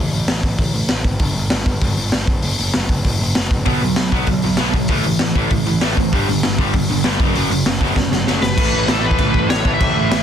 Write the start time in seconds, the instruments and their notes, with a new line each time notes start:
0.13 picked electric bass A1, open hi-hat
0.28 picked electric bass A1, snare, open hi-hat
0.43 picked electric bass A1, kick, open hi-hat
0.58 picked electric bass A1, kick, open hi-hat
0.74 picked electric bass A1, open hi-hat
0.89 picked electric bass A1, snare, open hi-hat
1.04 picked electric bass G#1, kick, open hi-hat
1.19 picked electric bass G1, kick, open hi-hat
1.35 picked electric bass G1, open hi-hat
1.50 picked electric bass G1, snare, open hi-hat
1.66 picked electric bass G1, kick, open hi-hat
1.81 picked electric bass G1, kick, open hi-hat
1.97 picked electric bass G1, open hi-hat
2.12 picked electric bass G1, snare, open hi-hat
2.27 picked electric bass F#1, kick, open hi-hat
2.42 picked electric bass F#1, open hi-hat
2.58 picked electric bass F#1, open hi-hat
2.74 picked electric bass F#1, snare, open hi-hat
2.89 picked electric bass F#1, kick, open hi-hat
3.05 picked electric bass F#1, kick, open hi-hat
3.20 picked electric bass F#1, open hi-hat
3.35 picked electric bass F#1, snare, open hi-hat
3.51 picked electric bass F#1, kick, open hi-hat
3.66 picked electric bass B1, overdriven electric guitar B2 F#3 B3, kick, open hi-hat
3.82 picked electric bass B1, overdriven electric guitar B2 F#3, open hi-hat
3.96 picked electric bass B1, overdriven electric guitar B2 F#3, snare, open hi-hat
4.12 picked electric bass B1, overdriven electric guitar B2 F#3 B3, kick, open hi-hat
4.27 picked electric bass B1, overdriven electric guitar B2 F#3, kick, open hi-hat
4.42 picked electric bass B1, overdriven electric guitar B2 F#3, open hi-hat
4.57 picked electric bass B1, overdriven electric guitar B2 F#3 B3, snare, open hi-hat
4.73 picked electric bass B1, overdriven electric guitar B2 F#3, kick, open hi-hat
4.88 picked electric bass A1, overdriven electric guitar A2 E3 A3, kick, open hi-hat
5.03 picked electric bass A1, overdriven electric guitar A2 E3, open hi-hat
5.19 picked electric bass A1, overdriven electric guitar A2 E3, snare, open hi-hat
5.35 picked electric bass A1, overdriven electric guitar A2 E3 A3, kick, open hi-hat
5.50 picked electric bass A1, overdriven electric guitar A2 E3, kick, open hi-hat
5.66 picked electric bass A1, overdriven electric guitar A2 E3, open hi-hat
5.81 picked electric bass A1, overdriven electric guitar A2 E3 A3, snare, open hi-hat
5.97 picked electric bass G#1, overdriven electric guitar A2 E3, kick, open hi-hat
6.13 picked electric bass G1, overdriven electric guitar G2 D3 G3, kick, open hi-hat
6.29 picked electric bass G1, overdriven electric guitar G2 D3, open hi-hat
6.43 picked electric bass G1, overdriven electric guitar G2 D3, snare, open hi-hat
6.58 picked electric bass G1, overdriven electric guitar G2 D3 G3, kick, open hi-hat
6.74 picked electric bass G1, overdriven electric guitar G2 D3, kick, open hi-hat
6.89 picked electric bass G1, overdriven electric guitar G2 D3, open hi-hat
7.04 picked electric bass G1, overdriven electric guitar G2 D3 G3, snare, open hi-hat
7.20 picked electric bass F#1, overdriven electric guitar F#2 C#3 F#3, kick, open hi-hat
7.35 picked electric bass F#1, overdriven electric guitar F#2 C#3 F#3, open hi-hat
7.50 picked electric bass F#1, overdriven electric guitar F#2 C#3, open hi-hat
7.65 picked electric bass F#1, overdriven electric guitar F#2 C#3, snare, open hi-hat
7.81 picked electric bass F#1, overdriven electric guitar F#2 C#3 F#3, kick, open hi-hat
7.96 picked electric bass F#1, overdriven electric guitar F#2 C#3, kick, snare
8.11 picked electric bass F#1, overdriven electric guitar F#2 C#3, snare
8.27 picked electric bass F#1, overdriven electric guitar F#2 C#3 F#3, snare
8.42 picked electric bass F#1, overdriven electric guitar F#2 C#3, lead electric guitar B4, snare
8.57 picked electric bass A1, overdriven electric guitar A2 E3 A3, kick, crash
8.73 picked electric bass A1
8.88 picked electric bass A1, overdriven electric guitar A2 E3 A3, lead electric guitar A4, snare, crash
9.04 overdriven electric guitar A2 E3 A3, lead electric guitar B4
9.11 kick
9.18 picked electric bass A1, overdriven electric guitar A2 E3 A3, kick, crash
9.34 picked electric bass A1, kick
9.50 picked electric bass A1, overdriven electric guitar A2 E3 A3, lead electric guitar C#5, snare, crash
9.64 picked electric bass A1, overdriven electric guitar A2 E3 A3, kick
9.74 lead electric guitar E5
9.80 picked electric bass A1, overdriven electric guitar A2 E3 A3, kick, crash
9.96 picked electric bass A1
10.11 picked electric bass A1, overdriven electric guitar A2 E3 A3, snare, crash